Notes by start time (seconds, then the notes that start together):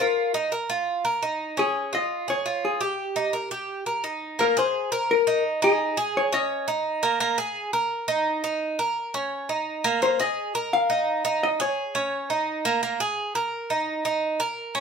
0.00 F4 A#4
0.34 D#4
0.52 A#4
0.70 F4
1.05 A#4
1.23 D#4
1.57 C#4 G#4
1.93 F4 D#5
2.28 G#4 C#5
2.46 F4
2.65 G#4
2.81 G4
3.16 D#4
3.33 A#4
3.51 G4
3.86 A#4
4.04 D#4
4.39 A#3 A#4
4.57 G#4 C5
4.92 A#4
5.11 A#4
5.27 D#4
5.62 D#4 G#4
5.97 G#4
6.17 C#5
6.33 C#4 D#5
6.68 D#4
7.03 A#3
7.20 A#3
7.38 G#4
7.73 A#4
8.08 D#4
8.44 D#4
8.79 A#4
9.14 C#4
9.49 D#4
9.84 A#3
10.02 A#3 C5
10.20 G#4 D#5
10.55 A#4
10.73 F5
10.90 D#4
11.25 D#4
11.43 D#5
11.60 G#4 C#5
11.95 C#4
12.30 D#4
12.65 A#3
12.83 A#3
13.00 G#4
13.35 A#4
13.70 D#4
14.05 D#4
14.40 A#4
14.75 C#4